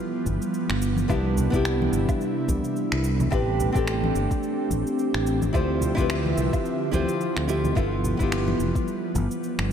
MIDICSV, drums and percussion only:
0, 0, Header, 1, 2, 480
1, 0, Start_track
1, 0, Key_signature, 0, "major"
1, 0, Tempo, 555556
1, 946, Time_signature, 4, 2, 24, 8
1, 8402, End_track
2, 0, Start_track
2, 0, Title_t, "Drums"
2, 226, Note_on_c, 9, 36, 56
2, 227, Note_on_c, 9, 69, 68
2, 228, Note_on_c, 9, 63, 53
2, 312, Note_off_c, 9, 36, 0
2, 313, Note_off_c, 9, 69, 0
2, 315, Note_off_c, 9, 63, 0
2, 362, Note_on_c, 9, 69, 42
2, 448, Note_off_c, 9, 69, 0
2, 466, Note_on_c, 9, 69, 32
2, 553, Note_off_c, 9, 69, 0
2, 601, Note_on_c, 9, 26, 72
2, 688, Note_off_c, 9, 26, 0
2, 707, Note_on_c, 9, 69, 70
2, 793, Note_off_c, 9, 69, 0
2, 835, Note_on_c, 9, 63, 78
2, 843, Note_on_c, 9, 69, 42
2, 921, Note_off_c, 9, 63, 0
2, 930, Note_off_c, 9, 69, 0
2, 946, Note_on_c, 9, 36, 107
2, 947, Note_on_c, 9, 77, 73
2, 948, Note_on_c, 9, 69, 34
2, 1033, Note_off_c, 9, 36, 0
2, 1033, Note_off_c, 9, 77, 0
2, 1034, Note_off_c, 9, 69, 0
2, 1188, Note_on_c, 9, 69, 76
2, 1190, Note_on_c, 9, 64, 70
2, 1274, Note_off_c, 9, 69, 0
2, 1276, Note_off_c, 9, 64, 0
2, 1322, Note_on_c, 9, 36, 92
2, 1325, Note_on_c, 9, 69, 43
2, 1409, Note_off_c, 9, 36, 0
2, 1412, Note_off_c, 9, 69, 0
2, 1428, Note_on_c, 9, 26, 75
2, 1428, Note_on_c, 9, 69, 32
2, 1514, Note_off_c, 9, 26, 0
2, 1515, Note_off_c, 9, 69, 0
2, 1571, Note_on_c, 9, 63, 85
2, 1657, Note_off_c, 9, 63, 0
2, 1668, Note_on_c, 9, 69, 72
2, 1754, Note_off_c, 9, 69, 0
2, 1803, Note_on_c, 9, 36, 108
2, 1803, Note_on_c, 9, 77, 58
2, 1804, Note_on_c, 9, 69, 42
2, 1889, Note_off_c, 9, 36, 0
2, 1890, Note_off_c, 9, 69, 0
2, 1890, Note_off_c, 9, 77, 0
2, 1909, Note_on_c, 9, 69, 31
2, 1995, Note_off_c, 9, 69, 0
2, 2147, Note_on_c, 9, 36, 56
2, 2148, Note_on_c, 9, 69, 78
2, 2154, Note_on_c, 9, 63, 53
2, 2234, Note_off_c, 9, 36, 0
2, 2235, Note_off_c, 9, 69, 0
2, 2241, Note_off_c, 9, 63, 0
2, 2284, Note_on_c, 9, 69, 41
2, 2370, Note_off_c, 9, 69, 0
2, 2387, Note_on_c, 9, 69, 33
2, 2474, Note_off_c, 9, 69, 0
2, 2522, Note_on_c, 9, 26, 73
2, 2609, Note_off_c, 9, 26, 0
2, 2627, Note_on_c, 9, 69, 73
2, 2713, Note_off_c, 9, 69, 0
2, 2764, Note_on_c, 9, 64, 77
2, 2764, Note_on_c, 9, 69, 44
2, 2770, Note_on_c, 9, 63, 84
2, 2851, Note_off_c, 9, 64, 0
2, 2851, Note_off_c, 9, 69, 0
2, 2856, Note_off_c, 9, 63, 0
2, 2867, Note_on_c, 9, 36, 112
2, 2868, Note_on_c, 9, 69, 33
2, 2868, Note_on_c, 9, 77, 71
2, 2954, Note_off_c, 9, 36, 0
2, 2954, Note_off_c, 9, 77, 0
2, 2955, Note_off_c, 9, 69, 0
2, 3110, Note_on_c, 9, 69, 79
2, 3111, Note_on_c, 9, 64, 74
2, 3196, Note_off_c, 9, 69, 0
2, 3198, Note_off_c, 9, 64, 0
2, 3243, Note_on_c, 9, 36, 96
2, 3245, Note_on_c, 9, 69, 44
2, 3330, Note_off_c, 9, 36, 0
2, 3331, Note_off_c, 9, 69, 0
2, 3348, Note_on_c, 9, 26, 78
2, 3349, Note_on_c, 9, 69, 32
2, 3434, Note_off_c, 9, 26, 0
2, 3435, Note_off_c, 9, 69, 0
2, 3488, Note_on_c, 9, 63, 94
2, 3574, Note_off_c, 9, 63, 0
2, 3589, Note_on_c, 9, 69, 74
2, 3675, Note_off_c, 9, 69, 0
2, 3724, Note_on_c, 9, 36, 102
2, 3724, Note_on_c, 9, 69, 43
2, 3810, Note_off_c, 9, 36, 0
2, 3811, Note_off_c, 9, 69, 0
2, 3828, Note_on_c, 9, 69, 30
2, 3915, Note_off_c, 9, 69, 0
2, 4066, Note_on_c, 9, 63, 66
2, 4068, Note_on_c, 9, 36, 55
2, 4070, Note_on_c, 9, 69, 76
2, 4153, Note_off_c, 9, 63, 0
2, 4155, Note_off_c, 9, 36, 0
2, 4156, Note_off_c, 9, 69, 0
2, 4206, Note_on_c, 9, 69, 47
2, 4293, Note_off_c, 9, 69, 0
2, 4309, Note_on_c, 9, 69, 35
2, 4396, Note_off_c, 9, 69, 0
2, 4444, Note_on_c, 9, 26, 70
2, 4531, Note_off_c, 9, 26, 0
2, 4550, Note_on_c, 9, 69, 73
2, 4636, Note_off_c, 9, 69, 0
2, 4680, Note_on_c, 9, 63, 87
2, 4685, Note_on_c, 9, 69, 45
2, 4766, Note_off_c, 9, 63, 0
2, 4772, Note_off_c, 9, 69, 0
2, 4787, Note_on_c, 9, 36, 114
2, 4789, Note_on_c, 9, 77, 70
2, 4790, Note_on_c, 9, 69, 34
2, 4874, Note_off_c, 9, 36, 0
2, 4875, Note_off_c, 9, 77, 0
2, 4876, Note_off_c, 9, 69, 0
2, 5024, Note_on_c, 9, 64, 66
2, 5027, Note_on_c, 9, 69, 76
2, 5110, Note_off_c, 9, 64, 0
2, 5113, Note_off_c, 9, 69, 0
2, 5163, Note_on_c, 9, 36, 93
2, 5164, Note_on_c, 9, 69, 42
2, 5249, Note_off_c, 9, 36, 0
2, 5250, Note_off_c, 9, 69, 0
2, 5268, Note_on_c, 9, 26, 74
2, 5269, Note_on_c, 9, 69, 33
2, 5355, Note_off_c, 9, 26, 0
2, 5355, Note_off_c, 9, 69, 0
2, 5408, Note_on_c, 9, 63, 85
2, 5494, Note_off_c, 9, 63, 0
2, 5509, Note_on_c, 9, 69, 74
2, 5595, Note_off_c, 9, 69, 0
2, 5643, Note_on_c, 9, 36, 101
2, 5644, Note_on_c, 9, 77, 53
2, 5645, Note_on_c, 9, 69, 40
2, 5729, Note_off_c, 9, 36, 0
2, 5731, Note_off_c, 9, 69, 0
2, 5731, Note_off_c, 9, 77, 0
2, 5749, Note_on_c, 9, 69, 31
2, 5835, Note_off_c, 9, 69, 0
2, 5987, Note_on_c, 9, 36, 59
2, 5989, Note_on_c, 9, 69, 70
2, 5990, Note_on_c, 9, 63, 59
2, 6073, Note_off_c, 9, 36, 0
2, 6075, Note_off_c, 9, 69, 0
2, 6076, Note_off_c, 9, 63, 0
2, 6123, Note_on_c, 9, 69, 44
2, 6209, Note_off_c, 9, 69, 0
2, 6228, Note_on_c, 9, 69, 32
2, 6314, Note_off_c, 9, 69, 0
2, 6364, Note_on_c, 9, 26, 71
2, 6450, Note_off_c, 9, 26, 0
2, 6469, Note_on_c, 9, 69, 74
2, 6556, Note_off_c, 9, 69, 0
2, 6606, Note_on_c, 9, 63, 86
2, 6606, Note_on_c, 9, 69, 44
2, 6608, Note_on_c, 9, 64, 76
2, 6692, Note_off_c, 9, 69, 0
2, 6693, Note_off_c, 9, 63, 0
2, 6695, Note_off_c, 9, 64, 0
2, 6707, Note_on_c, 9, 36, 112
2, 6711, Note_on_c, 9, 69, 31
2, 6711, Note_on_c, 9, 77, 67
2, 6794, Note_off_c, 9, 36, 0
2, 6797, Note_off_c, 9, 77, 0
2, 6798, Note_off_c, 9, 69, 0
2, 6946, Note_on_c, 9, 64, 69
2, 6950, Note_on_c, 9, 69, 70
2, 7032, Note_off_c, 9, 64, 0
2, 7037, Note_off_c, 9, 69, 0
2, 7083, Note_on_c, 9, 36, 91
2, 7086, Note_on_c, 9, 69, 41
2, 7170, Note_off_c, 9, 36, 0
2, 7172, Note_off_c, 9, 69, 0
2, 7190, Note_on_c, 9, 26, 72
2, 7191, Note_on_c, 9, 69, 31
2, 7276, Note_off_c, 9, 26, 0
2, 7277, Note_off_c, 9, 69, 0
2, 7325, Note_on_c, 9, 63, 91
2, 7411, Note_off_c, 9, 63, 0
2, 7429, Note_on_c, 9, 69, 69
2, 7515, Note_off_c, 9, 69, 0
2, 7563, Note_on_c, 9, 36, 97
2, 7566, Note_on_c, 9, 69, 40
2, 7650, Note_off_c, 9, 36, 0
2, 7652, Note_off_c, 9, 69, 0
2, 7670, Note_on_c, 9, 69, 31
2, 7756, Note_off_c, 9, 69, 0
2, 7908, Note_on_c, 9, 36, 55
2, 7908, Note_on_c, 9, 69, 73
2, 7914, Note_on_c, 9, 63, 64
2, 7994, Note_off_c, 9, 36, 0
2, 7994, Note_off_c, 9, 69, 0
2, 8000, Note_off_c, 9, 63, 0
2, 8045, Note_on_c, 9, 69, 45
2, 8131, Note_off_c, 9, 69, 0
2, 8151, Note_on_c, 9, 69, 33
2, 8237, Note_off_c, 9, 69, 0
2, 8284, Note_on_c, 9, 26, 68
2, 8371, Note_off_c, 9, 26, 0
2, 8402, End_track
0, 0, End_of_file